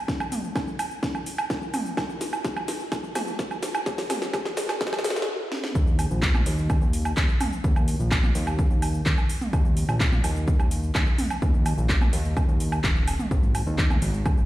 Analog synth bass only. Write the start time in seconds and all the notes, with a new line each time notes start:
5.75 D#2
6.11 A#1
6.46 D#2
6.82 D#2
7.17 D#2
7.64 D#2
8.00 A#1
8.35 D#2
8.71 D#2
9.06 D#2
9.53 D#2
9.89 A#1
10.24 D#2
10.60 D#2
10.95 D#2
11.42 D#2
11.78 A#1
12.13 D#2
12.49 D#2
12.84 D#1
13.31 G#1
13.67 D#2
14.02 G#1
14.38 G#1